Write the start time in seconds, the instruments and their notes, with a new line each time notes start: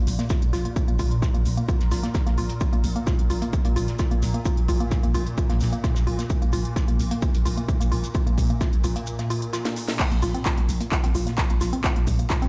Already playing: synth drone A#2
0.07 808-style bass A#1, open hi-hat, shaker
0.19 synth arpeggio sound A#3, snare, closed hi-hat
0.30 synth arpeggio sound F4, kick, snare, closed hi-hat, shaker
0.42 808-style bass A#1, closed hi-hat
0.53 808-style bass A#1, synth arpeggio sound F4, snare, open hi-hat, shaker
0.65 synth arpeggio sound A#3, closed hi-hat
0.76 kick, closed hi-hat, shaker
0.88 808-style bass A#1, synth arpeggio sound A#3, closed hi-hat
0.99 808-style bass A#1, synth arpeggio sound F4, kick, open hi-hat, shaker
1.11 closed hi-hat
1.22 synth arpeggio sound F4, kick, snare, closed hi-hat, shaker
1.34 808-style bass A#1, synth arpeggio sound A#3, closed hi-hat
1.45 808-style bass A#1, open hi-hat, shaker
1.57 synth arpeggio sound A#3, closed hi-hat
1.68 synth arpeggio sound F4, kick, closed hi-hat, shaker
1.80 808-style bass A#1, snare, closed hi-hat
1.91 808-style bass A#1, synth arpeggio sound F4, snare, open hi-hat, shaker
2.03 synth arpeggio sound A#3, snare, closed hi-hat
2.14 kick, snare, closed hi-hat, shaker
2.27 808-style bass A#1, synth arpeggio sound A#3, snare, closed hi-hat
2.38 808-style bass A#1, synth arpeggio sound F4, open hi-hat, shaker
2.49 closed hi-hat
2.61 synth arpeggio sound F4, kick, closed hi-hat, shaker
2.73 808-style bass A#1, synth arpeggio sound A#3, closed hi-hat
2.84 808-style bass A#1, open hi-hat, shaker
2.96 synth arpeggio sound A#3, closed hi-hat
3.06 synth arpeggio sound F4, kick, snare, closed hi-hat, shaker
3.19 808-style bass A#1, closed hi-hat
3.30 808-style bass A#1, synth arpeggio sound F4, open hi-hat, shaker
3.42 synth arpeggio sound A#3, closed hi-hat
3.53 kick, closed hi-hat, shaker
3.65 808-style bass A#1, synth arpeggio sound A#3, closed hi-hat
3.76 808-style bass A#1, synth arpeggio sound F4, open hi-hat, shaker
3.88 snare, closed hi-hat
3.99 synth arpeggio sound F4, kick, snare, closed hi-hat, shaker
4.11 808-style bass A#1, synth arpeggio sound A#3, closed hi-hat
4.22 808-style bass A#1, snare, open hi-hat, shaker
4.34 synth arpeggio sound A#3, closed hi-hat
4.45 synth arpeggio sound F4, kick, closed hi-hat, shaker
4.57 808-style bass A#1, closed hi-hat
4.68 808-style bass A#1, synth arpeggio sound F4, kick, open hi-hat, shaker
4.80 synth arpeggio sound A#3, closed hi-hat
4.91 kick, snare, closed hi-hat, shaker
5.03 808-style bass A#1, synth arpeggio sound A#3, closed hi-hat
5.14 808-style bass A#1, synth arpeggio sound F4, open hi-hat, shaker
5.27 closed hi-hat
5.38 synth arpeggio sound F4, kick, closed hi-hat, shaker
5.50 808-style bass A#1, synth arpeggio sound A#3, snare, closed hi-hat
5.60 808-style bass A#1, snare, open hi-hat, shaker
5.73 synth arpeggio sound A#3, closed hi-hat
5.84 synth arpeggio sound F4, kick, snare, closed hi-hat, shaker
5.95 808-style bass A#1, snare, closed hi-hat, shaker
6.07 808-style bass A#1, synth arpeggio sound F4, open hi-hat
6.19 synth arpeggio sound A#3, snare, closed hi-hat, shaker
6.30 kick, closed hi-hat, shaker
6.42 808-style bass A#1, synth arpeggio sound A#3, closed hi-hat
6.52 808-style bass A#1, synth arpeggio sound F4, open hi-hat, shaker
6.65 closed hi-hat
6.76 synth arpeggio sound F4, kick, snare, closed hi-hat, shaker
6.88 808-style bass A#1, synth arpeggio sound A#3, closed hi-hat
6.99 808-style bass A#1, open hi-hat, shaker
7.11 synth arpeggio sound A#3, closed hi-hat
7.22 synth arpeggio sound F4, kick, closed hi-hat, shaker
7.34 808-style bass A#1, closed hi-hat
7.45 808-style bass A#1, synth arpeggio sound F4, open hi-hat, shaker
7.57 synth arpeggio sound A#3, closed hi-hat
7.68 kick, closed hi-hat, shaker
7.80 808-style bass A#1, synth arpeggio sound A#3, closed hi-hat, shaker
7.92 808-style bass A#1, synth arpeggio sound F4, open hi-hat
8.04 closed hi-hat, shaker
8.14 synth arpeggio sound F4, kick, closed hi-hat, shaker
8.27 808-style bass A#1, synth arpeggio sound A#3, closed hi-hat
8.38 808-style bass A#1, kick, open hi-hat, shaker
8.50 synth arpeggio sound A#3, closed hi-hat
8.61 synth arpeggio sound F4, kick, snare, closed hi-hat, shaker
8.73 808-style bass A#1, closed hi-hat
8.84 808-style bass A#1, synth arpeggio sound F4, open hi-hat, shaker
8.96 synth arpeggio sound A#3, closed hi-hat
9.06 closed hi-hat, shaker
9.19 synth arpeggio sound A#3, snare, closed hi-hat
9.30 synth arpeggio sound F4, open hi-hat, shaker
9.42 closed hi-hat
9.53 synth arpeggio sound F4, snare, closed hi-hat, shaker
9.65 synth arpeggio sound A#3, snare, closed hi-hat
9.76 open hi-hat, shaker
9.88 synth arpeggio sound A#3, snare, closed hi-hat, open hi-hat
9.99 synth drone A#2, kick, clap, crash, shaker
10.11 808-style bass A#1, synth arpeggio sound A#3, closed hi-hat, shaker
10.22 808-style bass A#1, synth arpeggio sound F4, open hi-hat, shaker
10.34 synth arpeggio sound C4, closed hi-hat, shaker
10.45 synth arpeggio sound F4, kick, snare, clap, closed hi-hat, shaker
10.57 808-style bass A#1, synth arpeggio sound A#3, closed hi-hat, shaker
10.69 808-style bass A#1, open hi-hat, shaker
10.81 synth arpeggio sound A#3, closed hi-hat, shaker
10.92 synth arpeggio sound F4, kick, clap, closed hi-hat, shaker
11.04 808-style bass A#1, synth arpeggio sound C4, closed hi-hat, shaker
11.15 808-style bass A#1, synth arpeggio sound F4, open hi-hat, shaker
11.27 synth arpeggio sound A#3, snare, closed hi-hat, shaker
11.38 kick, snare, clap, closed hi-hat, shaker
11.50 808-style bass A#1, synth arpeggio sound A#3, closed hi-hat, shaker
11.61 808-style bass A#1, synth arpeggio sound F4, snare, open hi-hat, shaker
11.73 synth arpeggio sound C4, closed hi-hat, shaker
11.84 synth arpeggio sound F4, kick, clap, closed hi-hat, shaker
11.96 808-style bass A#1, synth arpeggio sound A#3, closed hi-hat, shaker
12.07 808-style bass A#1, kick, open hi-hat, shaker
12.19 synth arpeggio sound A#3, closed hi-hat, shaker
12.30 synth arpeggio sound F4, kick, snare, clap, closed hi-hat, shaker
12.42 808-style bass A#1, synth arpeggio sound C4, closed hi-hat, shaker